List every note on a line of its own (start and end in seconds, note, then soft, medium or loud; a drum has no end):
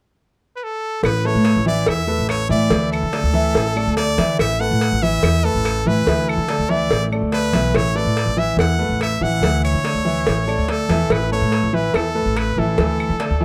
0.56 0.65 B4 medium
0.63 1.04 A4 loud
1.03 1.33 A1 loud
1.03 1.28 B4 loud
1.03 cowbell loud
1.03 claves medium
1.25 1.59 A3 medium
1.25 1.59 A4 medium
1.25 1.59 B4 medium
1.25 1.67 C#5 medium
1.34 1.55 A2 loud
1.45 cowbell medium
1.56 1.86 A1 medium
1.66 2.00 E3 medium
1.66 2.01 E4 medium
1.66 1.90 D5 loud
1.66 2.01 E5 medium
1.86 2.17 E2 loud
1.86 2.29 E5 loud
1.86 cowbell loud
1.86 claves medium
2.07 2.42 A3 medium
2.07 2.42 A4 medium
2.07 2.43 B4 medium
2.18 2.48 A1 medium
2.29 2.49 C#5 loud
2.29 cowbell medium
2.29 claves medium
2.49 2.70 A2 medium
2.49 2.67 E3 medium
2.49 2.67 E4 medium
2.49 2.90 D5 loud
2.49 2.67 E5 medium
2.70 3.01 D2 loud
2.70 3.05 E3 medium
2.70 3.05 E4 medium
2.70 3.05 E5 medium
2.70 cowbell loud
2.92 3.93 A4 loud
2.92 claves medium
3.03 3.23 D3 loud
3.13 3.30 A3 medium
3.13 3.30 A4 medium
3.13 3.30 D5 medium
3.13 cowbell medium
3.23 3.53 D2 medium
3.33 3.68 E3 medium
3.33 3.68 E4 loud
3.33 3.68 E5 medium
3.55 3.85 A1 loud
3.55 cowbell loud
3.76 3.93 A3 medium
3.76 3.93 A4 medium
3.76 3.94 D5 medium
3.76 claves medium
3.87 4.17 D2 medium
3.97 4.14 A3 medium
3.97 4.14 A4 medium
3.97 4.36 D5 loud
3.97 4.15 D5 medium
3.97 cowbell medium
4.18 4.38 D3 loud
4.18 4.52 E3 medium
4.18 4.53 E4 medium
4.18 4.53 E5 medium
4.18 cowbell medium
4.39 4.69 A1 loud
4.39 4.62 E5 loud
4.39 cowbell loud
4.39 claves medium
4.59 4.94 A3 medium
4.59 4.95 A4 medium
4.59 4.95 B4 medium
4.59 5.04 F#5 loud
4.71 4.91 A2 loud
4.81 cowbell medium
4.92 5.22 A1 medium
5.02 5.37 E3 medium
5.02 5.37 E4 medium
5.02 5.46 E5 loud
5.02 5.37 E5 medium
5.23 5.53 E2 loud
5.23 cowbell loud
5.23 claves medium
5.44 5.79 A3 medium
5.44 5.79 A4 medium
5.44 5.89 A4 loud
5.44 5.79 B4 medium
5.55 5.84 A1 medium
5.65 cowbell medium
5.65 claves medium
5.86 6.06 A2 loud
5.86 6.03 E3 medium
5.86 6.04 E4 medium
5.86 6.31 B4 loud
5.86 6.04 E5 medium
6.06 6.37 D2 loud
6.06 6.42 E3 medium
6.06 6.42 E4 medium
6.06 6.42 E5 medium
6.06 cowbell loud
6.29 6.71 A4 medium
6.29 claves medium
6.37 6.58 D3 loud
6.49 6.66 A3 medium
6.49 6.66 A4 medium
6.49 6.67 D5 medium
6.49 cowbell medium
6.59 6.89 D2 medium
6.69 7.04 E3 medium
6.69 7.04 E4 medium
6.69 7.06 D5 loud
6.69 7.04 E5 loud
6.90 7.20 A1 loud
6.90 cowbell loud
7.12 7.29 A3 medium
7.12 7.29 A4 medium
7.12 7.30 D5 medium
7.12 claves medium
7.22 7.52 D2 medium
7.32 7.50 A3 medium
7.32 7.50 A4 medium
7.32 7.78 B4 loud
7.32 7.50 D5 medium
7.32 cowbell medium
7.53 7.73 B1 medium
7.53 7.88 E3 medium
7.53 7.88 E4 medium
7.53 7.88 E5 medium
7.53 cowbell medium
7.74 8.04 A1 loud
7.74 7.98 C#5 loud
7.74 cowbell loud
7.74 claves medium
7.95 8.30 A3 medium
7.95 8.30 A4 medium
7.95 8.30 B4 medium
7.95 8.40 D5 loud
8.05 8.25 A2 loud
8.17 cowbell medium
8.26 8.56 A1 medium
8.37 8.72 E3 medium
8.37 8.72 E4 medium
8.37 8.72 E5 medium
8.37 8.58 E5 loud
8.57 8.88 E2 loud
8.57 8.98 F#5 loud
8.57 cowbell loud
8.57 claves medium
8.78 9.13 A3 medium
8.78 9.14 A4 medium
8.78 9.14 B4 medium
8.89 9.19 A1 medium
9.01 9.24 E5 loud
9.01 cowbell medium
9.01 claves medium
9.21 9.41 A1 medium
9.21 9.39 E3 medium
9.21 9.39 E4 medium
9.21 9.39 E5 medium
9.21 9.64 F#5 loud
9.41 9.72 D2 loud
9.41 9.77 E3 medium
9.41 9.77 E4 medium
9.41 9.77 E5 medium
9.41 cowbell loud
9.64 10.71 C#5 loud
9.64 claves medium
9.73 9.94 D3 medium
9.84 10.01 A3 medium
9.84 10.01 A4 medium
9.84 10.02 D5 medium
9.84 cowbell medium
9.94 10.25 D2 medium
10.05 10.40 E3 medium
10.05 10.40 E4 medium
10.05 10.40 E5 medium
10.27 10.57 A1 loud
10.27 cowbell loud
10.47 10.64 A3 medium
10.47 10.65 A4 medium
10.47 10.65 D5 medium
10.47 claves medium
10.58 10.88 D2 medium
10.68 10.86 A3 medium
10.68 10.86 A4 medium
10.68 11.13 A4 medium
10.68 10.86 D5 medium
10.68 cowbell medium
10.89 11.09 E2 loud
10.89 11.24 E3 medium
10.89 11.24 E4 medium
10.89 11.24 E5 medium
10.89 cowbell medium
11.10 11.40 A1 loud
11.10 11.32 B4 medium
11.10 cowbell loud
11.10 claves medium
11.31 11.66 A3 medium
11.31 11.66 A4 medium
11.31 11.66 B4 medium
11.31 11.76 C#5 medium
11.41 11.61 A2 loud
11.52 cowbell medium
11.63 11.92 A1 medium
11.73 12.07 E3 medium
11.73 12.07 E4 medium
11.73 11.96 B4 medium
11.73 12.08 E5 medium
11.94 12.24 E2 loud
11.94 12.39 A4 medium
11.94 cowbell loud
11.94 claves medium
12.15 12.49 A3 medium
12.15 12.49 A4 medium
12.15 12.49 B4 medium
12.26 12.55 A1 medium
12.36 12.60 B4 medium
12.36 cowbell medium
12.36 claves medium
12.57 12.77 A1 medium
12.57 12.74 E3 medium
12.57 12.75 E4 medium
12.57 13.45 A4 medium
12.57 12.75 E5 medium
12.78 13.08 D2 loud
12.78 13.13 E3 medium
12.78 13.13 E4 medium
12.78 13.13 E5 medium
12.78 cowbell loud
13.00 claves medium
13.10 13.29 D3 loud
13.20 13.37 A3 medium
13.20 13.37 A4 medium
13.20 13.37 D5 medium
13.20 cowbell medium
13.30 13.45 D2 medium
13.40 13.45 E3 medium
13.40 13.45 E4 medium
13.40 13.45 E5 medium